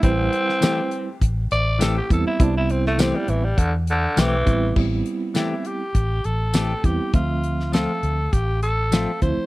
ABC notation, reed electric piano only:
X:1
M:4/4
L:1/16
Q:1/4=101
K:Am
V:1 name="Reed electric piano"
[G,CEB]6- [G,CEB] z6 z [G,B,CE]2 | [G,B,CE]6- [G,B,CE] z6 z [G,B,CE]2 | [G,B,CE]6- [G,B,CE] z6 z [G,B,CE]2 | [F,A,Ce]6- [F,A,Ce] z6 z [F,A,CE]2 |]